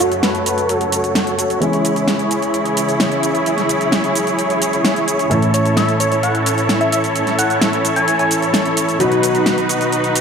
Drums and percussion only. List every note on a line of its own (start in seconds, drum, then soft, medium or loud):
0.00 closed hi-hat medium
0.00 cabasa medium
0.12 closed hi-hat soft
0.12 cabasa soft
0.23 snare loud
0.23 closed hi-hat medium
0.23 cabasa soft
0.35 closed hi-hat soft
0.35 cabasa soft
0.46 closed hi-hat medium
0.46 cabasa medium
0.58 closed hi-hat soft
0.58 cabasa soft
0.69 closed hi-hat medium
0.69 cabasa soft
0.81 closed hi-hat soft
0.81 cabasa soft
0.92 closed hi-hat medium
0.92 cabasa medium
1.04 closed hi-hat soft
1.04 cabasa soft
1.15 snare loud
1.15 closed hi-hat medium
1.15 cabasa soft
1.27 closed hi-hat soft
1.27 cabasa soft
1.39 closed hi-hat medium
1.39 cabasa medium
1.50 closed hi-hat soft
1.50 cabasa soft
1.62 closed hi-hat medium
1.62 cabasa soft
1.73 closed hi-hat soft
1.73 cabasa soft
1.85 closed hi-hat medium
1.85 cabasa medium
1.96 closed hi-hat soft
1.96 cabasa soft
2.08 snare loud
2.08 closed hi-hat medium
2.08 cabasa soft
2.19 closed hi-hat soft
2.19 cabasa soft
2.31 closed hi-hat medium
2.31 cabasa medium
2.42 closed hi-hat soft
2.42 cabasa soft
2.54 closed hi-hat medium
2.54 cabasa soft
2.65 closed hi-hat soft
2.65 cabasa soft
2.77 closed hi-hat medium
2.77 cabasa medium
2.89 closed hi-hat soft
2.89 cabasa soft
3.00 snare loud
3.00 closed hi-hat medium
3.00 cabasa soft
3.12 closed hi-hat soft
3.12 cabasa soft
3.23 closed hi-hat medium
3.23 cabasa medium
3.35 closed hi-hat soft
3.35 cabasa soft
3.46 closed hi-hat medium
3.46 cabasa soft
3.58 snare soft
3.58 closed hi-hat soft
3.58 cabasa soft
3.69 closed hi-hat medium
3.69 cabasa medium
3.81 closed hi-hat soft
3.81 cabasa soft
3.92 snare loud
3.92 closed hi-hat medium
3.92 cabasa soft
4.04 closed hi-hat soft
4.04 cabasa soft
4.15 closed hi-hat medium
4.15 cabasa medium
4.27 closed hi-hat soft
4.27 cabasa soft
4.39 closed hi-hat medium
4.39 cabasa soft
4.50 closed hi-hat soft
4.50 cabasa soft
4.62 closed hi-hat medium
4.62 cabasa medium
4.73 closed hi-hat soft
4.73 cabasa soft
4.85 snare loud
4.85 closed hi-hat medium
4.85 cabasa soft
4.96 closed hi-hat soft
4.96 cabasa soft
5.08 closed hi-hat medium
5.08 cabasa medium
5.19 closed hi-hat soft
5.19 cabasa soft
5.31 closed hi-hat medium
5.31 cabasa soft
5.42 closed hi-hat soft
5.42 cabasa soft
5.54 closed hi-hat medium
5.54 cabasa medium
5.65 closed hi-hat soft
5.65 cabasa soft
5.77 snare loud
5.77 closed hi-hat medium
5.77 cabasa soft
5.89 closed hi-hat soft
5.89 cabasa soft
6.00 closed hi-hat medium
6.00 cabasa medium
6.12 closed hi-hat soft
6.12 cabasa soft
6.23 closed hi-hat medium
6.23 cabasa soft
6.35 closed hi-hat soft
6.35 cabasa soft
6.46 closed hi-hat medium
6.46 cabasa medium
6.58 closed hi-hat soft
6.58 cabasa soft
6.69 snare loud
6.69 closed hi-hat medium
6.69 cabasa soft
6.81 closed hi-hat soft
6.81 cabasa soft
6.92 closed hi-hat medium
6.92 cabasa medium
7.04 closed hi-hat soft
7.04 cabasa soft
7.16 closed hi-hat medium
7.16 cabasa soft
7.27 snare soft
7.27 closed hi-hat soft
7.27 cabasa soft
7.39 closed hi-hat medium
7.39 cabasa medium
7.50 closed hi-hat soft
7.50 cabasa soft
7.61 snare loud
7.61 closed hi-hat medium
7.61 cabasa soft
7.73 closed hi-hat soft
7.73 cabasa soft
7.85 closed hi-hat medium
7.85 cabasa medium
7.96 closed hi-hat soft
7.96 cabasa soft
8.08 closed hi-hat medium
8.08 cabasa soft
8.19 closed hi-hat soft
8.19 cabasa soft
8.31 closed hi-hat medium
8.31 cabasa medium
8.42 closed hi-hat soft
8.42 cabasa soft
8.54 snare loud
8.54 closed hi-hat medium
8.54 cabasa soft
8.65 closed hi-hat soft
8.65 cabasa soft
8.77 closed hi-hat medium
8.77 cabasa medium
8.89 closed hi-hat soft
8.89 cabasa soft
9.00 closed hi-hat medium
9.00 cabasa soft
9.12 closed hi-hat soft
9.12 cabasa soft
9.23 closed hi-hat medium
9.23 cabasa medium
9.35 closed hi-hat soft
9.35 cabasa soft
9.46 snare loud
9.46 closed hi-hat medium
9.46 cabasa soft
9.58 closed hi-hat soft
9.58 cabasa soft
9.69 closed hi-hat medium
9.69 cabasa medium
9.81 closed hi-hat soft
9.81 cabasa soft
9.92 closed hi-hat medium
9.92 cabasa soft
10.04 closed hi-hat soft
10.04 cabasa soft
10.15 closed hi-hat medium
10.15 cabasa medium